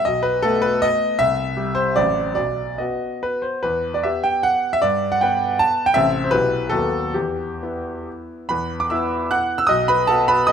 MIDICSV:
0, 0, Header, 1, 2, 480
1, 0, Start_track
1, 0, Key_signature, 1, "minor"
1, 0, Tempo, 386847
1, 60, Time_signature, 3, 2, 24, 8
1, 2942, Tempo, 430108
1, 3902, Tempo, 404585
1, 5342, Tempo, 383387
1, 6782, Tempo, 357995
1, 7742, Tempo, 417537
1, 8702, Tempo, 452489
1, 10142, Tempo, 395257
1, 12594, End_track
2, 0, Start_track
2, 0, Title_t, "Grand piano"
2, 0, Program_c, 0, 0
2, 63, Note_on_c, 0, 75, 113
2, 82, Note_on_c, 0, 35, 73
2, 280, Note_on_c, 0, 71, 109
2, 295, Note_off_c, 0, 75, 0
2, 323, Control_c, 0, 64, 127
2, 527, Note_on_c, 0, 69, 117
2, 537, Note_off_c, 0, 71, 0
2, 539, Note_on_c, 0, 57, 66
2, 540, Note_off_c, 0, 35, 0
2, 542, Note_on_c, 0, 59, 78
2, 765, Note_on_c, 0, 71, 116
2, 790, Note_off_c, 0, 69, 0
2, 1016, Note_on_c, 0, 75, 127
2, 1023, Note_off_c, 0, 71, 0
2, 1054, Control_c, 0, 64, 0
2, 1439, Note_off_c, 0, 57, 0
2, 1441, Note_off_c, 0, 59, 0
2, 1473, Note_on_c, 0, 76, 127
2, 1479, Note_off_c, 0, 75, 0
2, 1482, Note_on_c, 0, 36, 82
2, 1701, Control_c, 0, 64, 127
2, 1939, Note_off_c, 0, 36, 0
2, 1945, Note_on_c, 0, 67, 74
2, 1947, Note_on_c, 0, 55, 65
2, 2168, Note_on_c, 0, 72, 108
2, 2195, Note_off_c, 0, 76, 0
2, 2391, Note_off_c, 0, 67, 0
2, 2392, Note_off_c, 0, 55, 0
2, 2429, Note_off_c, 0, 72, 0
2, 2429, Note_on_c, 0, 74, 118
2, 2440, Note_on_c, 0, 54, 54
2, 2441, Note_on_c, 0, 33, 82
2, 2449, Note_on_c, 0, 60, 56
2, 2465, Control_c, 0, 64, 0
2, 2468, Note_on_c, 0, 66, 53
2, 2686, Control_c, 0, 64, 127
2, 2889, Note_off_c, 0, 54, 0
2, 2894, Note_off_c, 0, 60, 0
2, 2898, Note_off_c, 0, 74, 0
2, 2904, Note_off_c, 0, 66, 0
2, 2916, Note_on_c, 0, 74, 102
2, 2924, Note_off_c, 0, 33, 0
2, 2934, Note_on_c, 0, 35, 61
2, 2956, Control_c, 0, 64, 0
2, 3167, Control_c, 0, 64, 127
2, 3402, Note_on_c, 0, 75, 82
2, 3404, Note_off_c, 0, 35, 0
2, 3411, Note_off_c, 0, 74, 0
2, 3417, Note_on_c, 0, 59, 54
2, 3420, Note_on_c, 0, 66, 59
2, 3437, Control_c, 0, 64, 0
2, 3891, Note_off_c, 0, 75, 0
2, 3898, Note_on_c, 0, 71, 98
2, 4125, Note_on_c, 0, 72, 80
2, 4137, Note_off_c, 0, 71, 0
2, 4323, Note_off_c, 0, 59, 0
2, 4325, Note_off_c, 0, 66, 0
2, 4367, Note_off_c, 0, 72, 0
2, 4371, Note_on_c, 0, 71, 102
2, 4387, Note_on_c, 0, 40, 67
2, 4580, Control_c, 0, 64, 127
2, 4735, Note_off_c, 0, 71, 0
2, 4746, Note_on_c, 0, 74, 94
2, 4855, Note_off_c, 0, 40, 0
2, 4855, Note_on_c, 0, 76, 91
2, 4867, Note_off_c, 0, 74, 0
2, 4868, Note_on_c, 0, 59, 57
2, 4870, Note_on_c, 0, 67, 63
2, 4875, Control_c, 0, 64, 0
2, 5093, Note_on_c, 0, 79, 110
2, 5104, Note_off_c, 0, 76, 0
2, 5328, Note_on_c, 0, 78, 122
2, 5335, Note_off_c, 0, 79, 0
2, 5693, Note_off_c, 0, 78, 0
2, 5699, Note_on_c, 0, 76, 112
2, 5770, Note_off_c, 0, 59, 0
2, 5771, Note_off_c, 0, 67, 0
2, 5807, Note_on_c, 0, 74, 119
2, 5816, Note_off_c, 0, 76, 0
2, 5823, Note_on_c, 0, 43, 74
2, 6056, Control_c, 0, 64, 127
2, 6172, Note_off_c, 0, 74, 0
2, 6183, Note_on_c, 0, 78, 109
2, 6292, Note_off_c, 0, 43, 0
2, 6302, Note_on_c, 0, 79, 107
2, 6306, Note_off_c, 0, 78, 0
2, 6314, Note_on_c, 0, 59, 69
2, 6319, Note_on_c, 0, 71, 76
2, 6780, Note_on_c, 0, 81, 127
2, 6781, Note_off_c, 0, 79, 0
2, 6800, Control_c, 0, 64, 0
2, 7139, Note_off_c, 0, 81, 0
2, 7140, Note_on_c, 0, 79, 127
2, 7207, Note_off_c, 0, 59, 0
2, 7210, Note_off_c, 0, 71, 0
2, 7245, Note_on_c, 0, 76, 127
2, 7255, Note_off_c, 0, 79, 0
2, 7260, Note_on_c, 0, 33, 86
2, 7263, Note_on_c, 0, 48, 60
2, 7268, Note_on_c, 0, 60, 62
2, 7284, Note_on_c, 0, 69, 61
2, 7465, Control_c, 0, 64, 127
2, 7645, Note_on_c, 0, 72, 89
2, 7646, Note_off_c, 0, 76, 0
2, 7698, Note_off_c, 0, 48, 0
2, 7701, Note_off_c, 0, 60, 0
2, 7709, Note_off_c, 0, 69, 0
2, 7730, Note_off_c, 0, 33, 0
2, 7739, Note_off_c, 0, 72, 0
2, 7739, Note_on_c, 0, 71, 122
2, 7753, Note_on_c, 0, 52, 63
2, 7754, Note_on_c, 0, 35, 81
2, 7756, Note_on_c, 0, 59, 58
2, 7759, Control_c, 0, 64, 0
2, 7765, Note_on_c, 0, 67, 58
2, 7968, Control_c, 0, 64, 127
2, 8165, Note_off_c, 0, 52, 0
2, 8167, Note_off_c, 0, 59, 0
2, 8172, Note_off_c, 0, 67, 0
2, 8183, Note_on_c, 0, 69, 111
2, 8198, Note_off_c, 0, 35, 0
2, 8203, Note_on_c, 0, 54, 54
2, 8204, Note_on_c, 0, 39, 78
2, 8205, Note_off_c, 0, 71, 0
2, 8215, Note_on_c, 0, 59, 58
2, 8219, Control_c, 0, 64, 0
2, 8221, Note_on_c, 0, 66, 56
2, 8445, Control_c, 0, 64, 127
2, 8655, Note_off_c, 0, 54, 0
2, 8660, Note_off_c, 0, 59, 0
2, 8663, Note_off_c, 0, 66, 0
2, 8686, Note_off_c, 0, 39, 0
2, 8691, Note_off_c, 0, 69, 0
2, 8696, Note_on_c, 0, 67, 89
2, 8715, Note_on_c, 0, 40, 64
2, 8716, Control_c, 0, 64, 0
2, 8916, Control_c, 0, 64, 127
2, 9187, Note_off_c, 0, 40, 0
2, 9212, Note_on_c, 0, 59, 56
2, 9218, Note_on_c, 0, 64, 55
2, 9680, Note_off_c, 0, 67, 0
2, 9692, Control_c, 0, 64, 0
2, 10108, Note_off_c, 0, 59, 0
2, 10111, Note_off_c, 0, 64, 0
2, 10125, Note_on_c, 0, 83, 109
2, 10141, Note_on_c, 0, 71, 80
2, 10142, Note_on_c, 0, 40, 70
2, 10348, Control_c, 0, 64, 127
2, 10485, Note_off_c, 0, 71, 0
2, 10502, Note_off_c, 0, 83, 0
2, 10502, Note_on_c, 0, 86, 103
2, 10624, Note_on_c, 0, 88, 96
2, 10625, Note_off_c, 0, 40, 0
2, 10635, Note_off_c, 0, 86, 0
2, 10638, Note_on_c, 0, 76, 77
2, 10641, Note_on_c, 0, 59, 62
2, 10644, Note_on_c, 0, 64, 71
2, 11092, Note_off_c, 0, 76, 0
2, 11118, Note_on_c, 0, 90, 126
2, 11119, Note_off_c, 0, 88, 0
2, 11126, Note_on_c, 0, 78, 103
2, 11144, Control_c, 0, 64, 0
2, 11442, Note_off_c, 0, 78, 0
2, 11451, Note_on_c, 0, 88, 125
2, 11461, Note_off_c, 0, 90, 0
2, 11532, Note_off_c, 0, 59, 0
2, 11533, Note_off_c, 0, 64, 0
2, 11555, Note_on_c, 0, 87, 123
2, 11572, Note_off_c, 0, 88, 0
2, 11581, Note_on_c, 0, 35, 85
2, 11581, Note_on_c, 0, 75, 112
2, 11787, Control_c, 0, 64, 127
2, 11798, Note_off_c, 0, 75, 0
2, 11802, Note_off_c, 0, 87, 0
2, 11815, Note_on_c, 0, 83, 125
2, 11828, Note_on_c, 0, 71, 94
2, 12045, Note_off_c, 0, 35, 0
2, 12048, Note_on_c, 0, 81, 127
2, 12049, Note_off_c, 0, 71, 0
2, 12059, Note_off_c, 0, 83, 0
2, 12065, Note_on_c, 0, 69, 94
2, 12068, Note_on_c, 0, 66, 80
2, 12069, Note_on_c, 0, 59, 74
2, 12291, Note_off_c, 0, 69, 0
2, 12299, Note_off_c, 0, 81, 0
2, 12299, Note_on_c, 0, 83, 127
2, 12308, Note_on_c, 0, 71, 96
2, 12527, Note_on_c, 0, 87, 127
2, 12528, Note_off_c, 0, 71, 0
2, 12540, Note_off_c, 0, 83, 0
2, 12546, Note_on_c, 0, 75, 104
2, 12556, Control_c, 0, 64, 0
2, 12594, Note_off_c, 0, 59, 0
2, 12594, Note_off_c, 0, 66, 0
2, 12594, Note_off_c, 0, 75, 0
2, 12594, Note_off_c, 0, 87, 0
2, 12594, End_track
0, 0, End_of_file